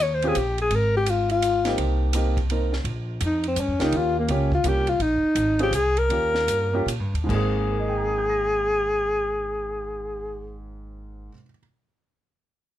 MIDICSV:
0, 0, Header, 1, 6, 480
1, 0, Start_track
1, 0, Key_signature, -4, "major"
1, 0, Tempo, 357143
1, 964, Time_signature, 3, 2, 24, 8
1, 7205, Tempo, 372671
1, 8645, Tempo, 403497
1, 9605, Tempo, 421348
1, 15866, End_track
2, 0, Start_track
2, 0, Title_t, "Alto saxophone"
2, 0, Program_c, 0, 65
2, 34, Note_on_c, 0, 73, 83
2, 191, Note_on_c, 0, 72, 75
2, 211, Note_off_c, 0, 73, 0
2, 374, Note_on_c, 0, 68, 73
2, 394, Note_off_c, 0, 72, 0
2, 508, Note_on_c, 0, 67, 77
2, 528, Note_off_c, 0, 68, 0
2, 807, Note_off_c, 0, 67, 0
2, 825, Note_on_c, 0, 68, 76
2, 1011, Note_on_c, 0, 70, 80
2, 1031, Note_off_c, 0, 68, 0
2, 1290, Note_off_c, 0, 70, 0
2, 1298, Note_on_c, 0, 67, 93
2, 1477, Note_on_c, 0, 65, 78
2, 1497, Note_off_c, 0, 67, 0
2, 1754, Note_off_c, 0, 65, 0
2, 1762, Note_on_c, 0, 65, 90
2, 2362, Note_off_c, 0, 65, 0
2, 4375, Note_on_c, 0, 63, 67
2, 4640, Note_off_c, 0, 63, 0
2, 4670, Note_on_c, 0, 60, 73
2, 4839, Note_on_c, 0, 61, 71
2, 4860, Note_off_c, 0, 60, 0
2, 5145, Note_on_c, 0, 63, 81
2, 5165, Note_off_c, 0, 61, 0
2, 5327, Note_on_c, 0, 65, 84
2, 5348, Note_off_c, 0, 63, 0
2, 5616, Note_off_c, 0, 65, 0
2, 5635, Note_on_c, 0, 58, 60
2, 5807, Note_on_c, 0, 61, 60
2, 5827, Note_off_c, 0, 58, 0
2, 6096, Note_off_c, 0, 61, 0
2, 6108, Note_on_c, 0, 65, 81
2, 6293, Note_on_c, 0, 67, 83
2, 6313, Note_off_c, 0, 65, 0
2, 6572, Note_on_c, 0, 65, 82
2, 6592, Note_off_c, 0, 67, 0
2, 6748, Note_on_c, 0, 63, 71
2, 6768, Note_off_c, 0, 65, 0
2, 7520, Note_off_c, 0, 63, 0
2, 7545, Note_on_c, 0, 67, 86
2, 7710, Note_on_c, 0, 68, 78
2, 7730, Note_off_c, 0, 67, 0
2, 8001, Note_on_c, 0, 70, 84
2, 8020, Note_off_c, 0, 68, 0
2, 9124, Note_off_c, 0, 70, 0
2, 9623, Note_on_c, 0, 68, 72
2, 13360, Note_off_c, 0, 68, 0
2, 15866, End_track
3, 0, Start_track
3, 0, Title_t, "Grand piano"
3, 0, Program_c, 1, 0
3, 317, Note_on_c, 1, 60, 72
3, 318, Note_on_c, 1, 61, 68
3, 324, Note_on_c, 1, 65, 64
3, 336, Note_on_c, 1, 67, 81
3, 469, Note_off_c, 1, 60, 0
3, 469, Note_off_c, 1, 61, 0
3, 472, Note_off_c, 1, 65, 0
3, 478, Note_off_c, 1, 67, 0
3, 2225, Note_on_c, 1, 58, 61
3, 2232, Note_on_c, 1, 60, 54
3, 2239, Note_on_c, 1, 63, 56
3, 2248, Note_on_c, 1, 67, 68
3, 2844, Note_off_c, 1, 58, 0
3, 2848, Note_off_c, 1, 60, 0
3, 2851, Note_off_c, 1, 63, 0
3, 2856, Note_off_c, 1, 67, 0
3, 2881, Note_on_c, 1, 58, 59
3, 2887, Note_on_c, 1, 60, 51
3, 2888, Note_on_c, 1, 63, 52
3, 2901, Note_on_c, 1, 67, 60
3, 3162, Note_off_c, 1, 58, 0
3, 3165, Note_off_c, 1, 60, 0
3, 3165, Note_off_c, 1, 63, 0
3, 3172, Note_off_c, 1, 67, 0
3, 3369, Note_on_c, 1, 60, 44
3, 3373, Note_on_c, 1, 58, 45
3, 3376, Note_on_c, 1, 63, 42
3, 3387, Note_on_c, 1, 70, 55
3, 3646, Note_off_c, 1, 60, 0
3, 3648, Note_off_c, 1, 58, 0
3, 3649, Note_off_c, 1, 63, 0
3, 3655, Note_off_c, 1, 70, 0
3, 5107, Note_on_c, 1, 58, 65
3, 5110, Note_on_c, 1, 61, 55
3, 5118, Note_on_c, 1, 65, 56
3, 5123, Note_on_c, 1, 67, 68
3, 5725, Note_off_c, 1, 58, 0
3, 5727, Note_off_c, 1, 61, 0
3, 5731, Note_off_c, 1, 65, 0
3, 5734, Note_off_c, 1, 67, 0
3, 5763, Note_on_c, 1, 58, 61
3, 5776, Note_on_c, 1, 61, 60
3, 5781, Note_on_c, 1, 65, 56
3, 5787, Note_on_c, 1, 67, 74
3, 6043, Note_off_c, 1, 58, 0
3, 6050, Note_off_c, 1, 61, 0
3, 6052, Note_off_c, 1, 65, 0
3, 6055, Note_off_c, 1, 67, 0
3, 6251, Note_on_c, 1, 58, 58
3, 6261, Note_on_c, 1, 61, 55
3, 6262, Note_on_c, 1, 65, 53
3, 6266, Note_on_c, 1, 67, 66
3, 6527, Note_off_c, 1, 58, 0
3, 6532, Note_off_c, 1, 61, 0
3, 6533, Note_off_c, 1, 65, 0
3, 6535, Note_off_c, 1, 67, 0
3, 7506, Note_on_c, 1, 60, 65
3, 7507, Note_on_c, 1, 61, 62
3, 7514, Note_on_c, 1, 65, 58
3, 7514, Note_on_c, 1, 68, 71
3, 7657, Note_off_c, 1, 60, 0
3, 7657, Note_off_c, 1, 61, 0
3, 7660, Note_off_c, 1, 65, 0
3, 7661, Note_off_c, 1, 68, 0
3, 8162, Note_on_c, 1, 58, 52
3, 8163, Note_on_c, 1, 61, 51
3, 8167, Note_on_c, 1, 65, 51
3, 8178, Note_on_c, 1, 67, 59
3, 8891, Note_off_c, 1, 58, 0
3, 8892, Note_off_c, 1, 61, 0
3, 8894, Note_off_c, 1, 65, 0
3, 8899, Note_off_c, 1, 67, 0
3, 8947, Note_on_c, 1, 58, 64
3, 8954, Note_on_c, 1, 61, 60
3, 8964, Note_on_c, 1, 67, 75
3, 8967, Note_on_c, 1, 65, 61
3, 9099, Note_off_c, 1, 58, 0
3, 9102, Note_off_c, 1, 61, 0
3, 9107, Note_off_c, 1, 67, 0
3, 9109, Note_off_c, 1, 65, 0
3, 9547, Note_on_c, 1, 44, 64
3, 9578, Note_on_c, 1, 56, 55
3, 9613, Note_on_c, 1, 58, 55
3, 9650, Note_on_c, 1, 60, 55
3, 9677, Note_on_c, 1, 68, 71
3, 10103, Note_on_c, 1, 70, 41
3, 10186, Note_on_c, 1, 75, 40
3, 10288, Note_on_c, 1, 79, 38
3, 10387, Note_on_c, 1, 82, 35
3, 10503, Note_on_c, 1, 87, 34
3, 10623, Note_on_c, 1, 91, 33
3, 10757, Note_on_c, 1, 94, 32
3, 14158, Note_off_c, 1, 70, 0
3, 14166, Note_off_c, 1, 44, 0
3, 14181, Note_off_c, 1, 56, 0
3, 14198, Note_off_c, 1, 58, 0
3, 14199, Note_off_c, 1, 75, 0
3, 14216, Note_off_c, 1, 60, 0
3, 14230, Note_off_c, 1, 68, 0
3, 14250, Note_off_c, 1, 79, 0
3, 14299, Note_off_c, 1, 82, 0
3, 14357, Note_off_c, 1, 87, 0
3, 14417, Note_off_c, 1, 91, 0
3, 14484, Note_off_c, 1, 94, 0
3, 15866, End_track
4, 0, Start_track
4, 0, Title_t, "Upright bass"
4, 0, Program_c, 2, 32
4, 0, Note_on_c, 2, 39, 84
4, 423, Note_off_c, 2, 39, 0
4, 471, Note_on_c, 2, 34, 70
4, 923, Note_off_c, 2, 34, 0
4, 947, Note_on_c, 2, 32, 86
4, 2341, Note_off_c, 2, 32, 0
4, 2390, Note_on_c, 2, 36, 80
4, 3782, Note_off_c, 2, 36, 0
4, 3822, Note_on_c, 2, 34, 82
4, 4298, Note_off_c, 2, 34, 0
4, 4313, Note_on_c, 2, 41, 87
4, 4778, Note_off_c, 2, 41, 0
4, 4786, Note_on_c, 2, 43, 82
4, 4946, Note_on_c, 2, 41, 49
4, 4966, Note_off_c, 2, 43, 0
4, 5103, Note_off_c, 2, 41, 0
4, 5111, Note_on_c, 2, 37, 55
4, 5266, Note_off_c, 2, 37, 0
4, 5276, Note_on_c, 2, 39, 78
4, 5745, Note_off_c, 2, 39, 0
4, 5759, Note_on_c, 2, 37, 80
4, 6227, Note_off_c, 2, 37, 0
4, 6235, Note_on_c, 2, 36, 79
4, 6705, Note_off_c, 2, 36, 0
4, 6713, Note_on_c, 2, 34, 76
4, 7008, Note_off_c, 2, 34, 0
4, 7192, Note_on_c, 2, 32, 82
4, 7647, Note_off_c, 2, 32, 0
4, 7655, Note_on_c, 2, 36, 78
4, 8129, Note_off_c, 2, 36, 0
4, 8150, Note_on_c, 2, 39, 76
4, 8629, Note_off_c, 2, 39, 0
4, 8635, Note_on_c, 2, 43, 76
4, 9090, Note_off_c, 2, 43, 0
4, 9097, Note_on_c, 2, 46, 75
4, 9260, Note_off_c, 2, 46, 0
4, 9260, Note_on_c, 2, 43, 45
4, 9420, Note_off_c, 2, 43, 0
4, 9427, Note_on_c, 2, 39, 56
4, 9588, Note_off_c, 2, 39, 0
4, 9611, Note_on_c, 2, 32, 81
4, 14151, Note_off_c, 2, 32, 0
4, 15866, End_track
5, 0, Start_track
5, 0, Title_t, "Muted upright bass strokes"
5, 7022, Note_on_c, 9, 29, 36
5, 7157, Note_off_c, 9, 29, 0
5, 15866, End_track
6, 0, Start_track
6, 0, Title_t, "Drums"
6, 301, Note_on_c, 9, 51, 44
6, 435, Note_off_c, 9, 51, 0
6, 470, Note_on_c, 9, 44, 54
6, 470, Note_on_c, 9, 51, 65
6, 604, Note_off_c, 9, 44, 0
6, 604, Note_off_c, 9, 51, 0
6, 780, Note_on_c, 9, 51, 42
6, 914, Note_off_c, 9, 51, 0
6, 949, Note_on_c, 9, 51, 59
6, 1083, Note_off_c, 9, 51, 0
6, 1429, Note_on_c, 9, 44, 52
6, 1429, Note_on_c, 9, 51, 68
6, 1563, Note_off_c, 9, 44, 0
6, 1563, Note_off_c, 9, 51, 0
6, 1740, Note_on_c, 9, 51, 43
6, 1875, Note_off_c, 9, 51, 0
6, 1913, Note_on_c, 9, 44, 56
6, 1913, Note_on_c, 9, 51, 63
6, 2048, Note_off_c, 9, 44, 0
6, 2048, Note_off_c, 9, 51, 0
6, 2217, Note_on_c, 9, 38, 36
6, 2217, Note_on_c, 9, 51, 45
6, 2351, Note_off_c, 9, 38, 0
6, 2351, Note_off_c, 9, 51, 0
6, 2390, Note_on_c, 9, 51, 61
6, 2525, Note_off_c, 9, 51, 0
6, 2864, Note_on_c, 9, 44, 52
6, 2864, Note_on_c, 9, 51, 69
6, 2998, Note_off_c, 9, 44, 0
6, 2998, Note_off_c, 9, 51, 0
6, 3186, Note_on_c, 9, 36, 53
6, 3191, Note_on_c, 9, 51, 41
6, 3320, Note_off_c, 9, 36, 0
6, 3325, Note_off_c, 9, 51, 0
6, 3357, Note_on_c, 9, 51, 54
6, 3491, Note_off_c, 9, 51, 0
6, 3666, Note_on_c, 9, 38, 33
6, 3801, Note_off_c, 9, 38, 0
6, 3829, Note_on_c, 9, 51, 51
6, 3963, Note_off_c, 9, 51, 0
6, 4308, Note_on_c, 9, 44, 62
6, 4308, Note_on_c, 9, 51, 70
6, 4442, Note_off_c, 9, 44, 0
6, 4442, Note_off_c, 9, 51, 0
6, 4618, Note_on_c, 9, 51, 42
6, 4752, Note_off_c, 9, 51, 0
6, 4788, Note_on_c, 9, 44, 55
6, 4788, Note_on_c, 9, 51, 61
6, 4922, Note_off_c, 9, 44, 0
6, 4922, Note_off_c, 9, 51, 0
6, 5107, Note_on_c, 9, 38, 50
6, 5107, Note_on_c, 9, 51, 43
6, 5241, Note_off_c, 9, 38, 0
6, 5241, Note_off_c, 9, 51, 0
6, 5274, Note_on_c, 9, 51, 50
6, 5408, Note_off_c, 9, 51, 0
6, 5758, Note_on_c, 9, 51, 56
6, 5892, Note_off_c, 9, 51, 0
6, 6072, Note_on_c, 9, 36, 48
6, 6206, Note_off_c, 9, 36, 0
6, 6235, Note_on_c, 9, 44, 50
6, 6235, Note_on_c, 9, 51, 62
6, 6370, Note_off_c, 9, 44, 0
6, 6370, Note_off_c, 9, 51, 0
6, 6545, Note_on_c, 9, 51, 43
6, 6679, Note_off_c, 9, 51, 0
6, 6718, Note_on_c, 9, 51, 50
6, 6853, Note_off_c, 9, 51, 0
6, 7197, Note_on_c, 9, 44, 50
6, 7197, Note_on_c, 9, 51, 63
6, 7326, Note_off_c, 9, 44, 0
6, 7326, Note_off_c, 9, 51, 0
6, 7502, Note_on_c, 9, 51, 42
6, 7630, Note_off_c, 9, 51, 0
6, 7676, Note_on_c, 9, 44, 55
6, 7676, Note_on_c, 9, 51, 58
6, 7804, Note_off_c, 9, 44, 0
6, 7804, Note_off_c, 9, 51, 0
6, 7986, Note_on_c, 9, 51, 40
6, 8115, Note_off_c, 9, 51, 0
6, 8158, Note_on_c, 9, 51, 53
6, 8287, Note_off_c, 9, 51, 0
6, 8474, Note_on_c, 9, 38, 36
6, 8603, Note_off_c, 9, 38, 0
6, 8647, Note_on_c, 9, 44, 64
6, 8647, Note_on_c, 9, 51, 60
6, 8766, Note_off_c, 9, 44, 0
6, 8766, Note_off_c, 9, 51, 0
6, 9125, Note_on_c, 9, 44, 51
6, 9125, Note_on_c, 9, 51, 61
6, 9244, Note_off_c, 9, 44, 0
6, 9244, Note_off_c, 9, 51, 0
6, 9443, Note_on_c, 9, 51, 38
6, 9562, Note_off_c, 9, 51, 0
6, 9611, Note_on_c, 9, 36, 52
6, 9619, Note_on_c, 9, 49, 56
6, 9725, Note_off_c, 9, 36, 0
6, 9733, Note_off_c, 9, 49, 0
6, 15866, End_track
0, 0, End_of_file